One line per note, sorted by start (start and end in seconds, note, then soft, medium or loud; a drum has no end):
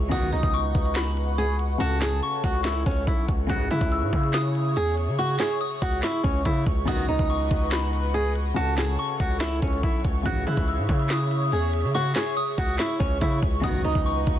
0.00 0.11 C#2 loud
0.09 0.32 C#2 loud
0.09 0.42 F#2 loud
0.09 0.42 B2 loud
0.09 1.76 C#3 medium
0.09 0.42 D#3 loud
0.09 1.77 B3 medium
0.09 1.78 D#4 medium
0.09 0.29 F#4 loud
0.09 1.79 B4 medium
0.09 1.79 D#5 medium
0.09 3.46 F#5 medium
0.09 3.46 C#6 medium
0.09 0.51 D#6 loud
0.09 kick loud
0.09 closed hi-hat medium
0.14 1.79 F#4 medium
0.32 0.43 C#2 loud
0.32 1.34 D#4 medium
0.32 open hi-hat medium
0.43 0.74 C#2 loud
0.43 kick loud
0.54 0.93 C#6 medium
0.54 closed hi-hat medium
0.75 1.77 C#2 loud
0.75 kick loud
0.75 closed hi-hat medium
0.85 closed hi-hat medium
0.96 1.77 B5 medium
0.96 snare loud
0.96 clap loud
0.96 closed hi-hat medium
1.17 closed hi-hat medium
1.38 1.56 G#4 medium
1.38 closed hi-hat medium
1.59 closed hi-hat medium
1.78 2.21 C#2 loud
1.78 3.45 C#3 medium
1.78 3.46 C#4 medium
1.78 1.98 F#4 loud
1.78 3.47 F#4 medium
1.78 3.48 A4 medium
1.78 3.48 C#5 medium
1.78 2.20 A5 loud
1.78 closed hi-hat medium
1.83 3.48 A4 medium
2.01 2.19 G#4 medium
2.01 snare loud
2.01 clap medium
2.01 open hi-hat medium
2.23 3.03 C#6 loud
2.23 closed hi-hat medium
2.44 2.84 C#2 loud
2.44 2.62 F#4 medium
2.44 kick loud
2.44 closed hi-hat medium
2.54 closed hi-hat soft
2.64 2.82 E4 loud
2.64 snare loud
2.64 clap medium
2.64 closed hi-hat medium
2.86 3.06 C#2 loud
2.86 3.04 C#4 medium
2.86 kick loud
2.86 closed hi-hat medium
2.91 closed hi-hat medium
2.97 closed hi-hat medium
3.02 closed hi-hat soft
3.07 3.28 B1 loud
3.07 3.25 E4 medium
3.07 kick loud
3.07 closed hi-hat medium
3.28 3.49 C#2 loud
3.28 kick medium
3.28 closed hi-hat medium
3.47 3.70 C#2 loud
3.47 3.80 G#2 loud
3.47 6.82 C#3 medium
3.47 3.80 C#3 loud
3.47 3.80 E3 loud
3.47 6.83 C#4 medium
3.47 6.84 E4 medium
3.47 3.67 F#4 loud
3.47 6.84 G#4 medium
3.47 6.84 C#5 medium
3.47 6.84 E5 medium
3.47 6.84 C#6 medium
3.47 3.89 F#6 loud
3.47 kick loud
3.47 closed hi-hat medium
3.52 6.85 G#4 medium
3.71 3.81 C#3 loud
3.71 4.72 E4 medium
3.71 open hi-hat medium
3.81 4.04 C#2 loud
3.81 kick medium
3.92 4.32 E6 medium
3.92 closed hi-hat medium
4.02 4.12 G#2 loud
4.13 4.78 C#3 loud
4.13 kick loud
4.13 closed hi-hat medium
4.23 closed hi-hat medium
4.34 5.15 D#6 medium
4.34 snare loud
4.34 clap loud
4.34 closed hi-hat medium
4.55 closed hi-hat medium
4.76 5.09 E2 loud
4.76 4.94 G#4 medium
4.76 closed hi-hat medium
4.97 closed hi-hat medium
5.08 5.38 C#3 loud
5.19 5.36 F#4 loud
5.19 5.58 C#6 loud
5.19 closed hi-hat medium
5.39 5.57 G#4 medium
5.39 snare loud
5.39 clap medium
5.39 open hi-hat medium
5.61 6.00 D#6 medium
5.61 closed hi-hat medium
5.82 6.02 C#2 loud
5.82 6.00 F#4 medium
5.82 kick loud
5.82 closed hi-hat medium
5.92 closed hi-hat medium
6.03 6.21 E4 medium
6.03 6.84 C#6 medium
6.03 snare loud
6.03 clap loud
6.03 closed hi-hat medium
6.23 6.45 C#2 loud
6.23 6.41 C#4 medium
6.23 kick loud
6.23 closed hi-hat medium
6.45 6.66 C#3 loud
6.45 6.63 E4 medium
6.45 kick loud
6.45 closed hi-hat medium
6.66 6.87 C#2 loud
6.66 kick medium
6.66 closed hi-hat medium
6.85 7.08 C#2 loud
6.85 7.18 F#2 loud
6.85 7.18 B2 loud
6.85 8.52 C#3 medium
6.85 7.18 D#3 loud
6.85 8.53 B3 medium
6.85 8.54 D#4 medium
6.85 7.05 F#4 loud
6.85 8.55 B4 medium
6.85 8.55 D#5 medium
6.85 10.22 F#5 medium
6.85 14.39 C#6 loud
6.85 7.27 D#6 loud
6.85 kick loud
6.85 closed hi-hat medium
6.90 8.55 F#4 medium
7.08 7.19 C#2 loud
7.08 8.10 D#4 medium
7.08 open hi-hat medium
7.19 7.50 C#2 loud
7.19 kick medium
7.30 7.70 C#6 medium
7.30 closed hi-hat medium
7.51 8.53 C#2 loud
7.51 kick loud
7.51 closed hi-hat medium
7.62 closed hi-hat medium
7.72 8.53 B5 medium
7.72 snare loud
7.72 clap medium
7.72 closed hi-hat medium
7.93 closed hi-hat medium
8.14 8.32 G#4 medium
8.14 closed hi-hat medium
8.35 closed hi-hat medium
8.54 8.97 C#2 loud
8.54 10.21 C#3 medium
8.54 10.22 C#4 medium
8.54 8.74 F#4 loud
8.54 10.23 F#4 medium
8.54 10.24 A4 medium
8.54 13.60 C#5 medium
8.54 8.96 A5 loud
8.54 closed hi-hat medium
8.59 10.24 A4 medium
8.77 8.95 G#4 medium
8.77 snare loud
8.77 clap medium
8.77 open hi-hat medium
8.99 9.79 C#6 loud
8.99 closed hi-hat medium
9.20 9.61 C#2 loud
9.20 9.38 F#4 medium
9.20 kick loud
9.20 closed hi-hat medium
9.31 closed hi-hat soft
9.40 9.58 E4 loud
9.40 snare loud
9.40 clap medium
9.40 closed hi-hat medium
9.62 9.83 C#2 loud
9.62 9.80 C#4 medium
9.62 kick loud
9.62 closed hi-hat medium
9.68 closed hi-hat medium
9.73 closed hi-hat medium
9.78 closed hi-hat soft
9.83 10.04 B1 loud
9.83 10.01 E4 medium
9.83 kick loud
9.83 closed hi-hat medium
10.04 10.25 C#2 loud
10.04 kick loud
10.04 closed hi-hat medium
10.23 10.46 C#2 loud
10.23 10.56 G#2 loud
10.23 13.58 C#3 medium
10.23 10.56 C#3 loud
10.23 10.56 E3 loud
10.23 13.59 C#4 medium
10.23 13.60 E4 medium
10.23 10.43 F#4 loud
10.23 13.60 G#4 medium
10.23 13.60 E5 medium
10.23 10.65 F#6 loud
10.23 kick loud
10.23 closed hi-hat medium
10.28 13.61 G#4 medium
10.47 10.57 C#3 loud
10.47 11.48 E4 medium
10.47 open hi-hat medium
10.57 10.80 C#2 loud
10.57 kick loud
10.68 11.08 E6 medium
10.68 closed hi-hat medium
10.78 10.88 G#2 loud
10.89 11.54 C#3 loud
10.89 kick loud
10.89 closed hi-hat medium
11.00 closed hi-hat medium
11.10 11.91 D#6 loud
11.10 snare loud
11.10 clap loud
11.10 closed hi-hat medium
11.31 closed hi-hat medium
11.52 11.86 E2 loud
11.52 11.70 G#4 medium
11.52 closed hi-hat medium
11.73 closed hi-hat medium
11.84 12.14 C#3 loud
11.95 12.12 F#4 loud
11.95 12.34 C#6 loud
11.95 closed hi-hat medium
12.15 12.33 G#4 medium
12.15 snare loud
12.15 clap medium
12.15 open hi-hat medium
12.37 12.76 D#6 medium
12.37 closed hi-hat medium
12.58 12.78 C#2 loud
12.58 12.76 F#4 medium
12.58 kick loud
12.58 closed hi-hat medium
12.69 closed hi-hat medium
12.79 12.97 E4 medium
12.79 13.60 C#6 medium
12.79 snare loud
12.79 clap loud
12.79 closed hi-hat medium
12.99 13.21 C#2 loud
12.99 13.17 C#4 medium
12.99 kick loud
12.99 closed hi-hat medium
13.21 13.42 C#3 loud
13.21 13.39 E4 medium
13.21 kick loud
13.21 closed hi-hat medium
13.42 13.63 C#2 loud
13.42 kick medium
13.42 closed hi-hat medium
13.61 13.84 C#2 loud
13.61 13.94 F#2 loud
13.61 13.94 B2 loud
13.61 14.39 C#3 medium
13.61 13.94 D#3 loud
13.61 14.39 B3 medium
13.61 14.39 D#4 medium
13.61 13.81 F#4 loud
13.61 14.39 B4 medium
13.61 14.39 D#5 medium
13.61 14.39 F#5 medium
13.61 14.03 D#6 loud
13.61 kick loud
13.61 closed hi-hat medium
13.66 14.39 F#4 medium
13.84 13.95 C#2 loud
13.84 14.39 D#4 medium
13.84 open hi-hat medium
13.95 14.26 C#2 loud
13.95 kick loud
14.06 14.39 C#6 medium
14.06 closed hi-hat medium
14.27 14.39 C#2 loud
14.27 kick loud
14.27 closed hi-hat medium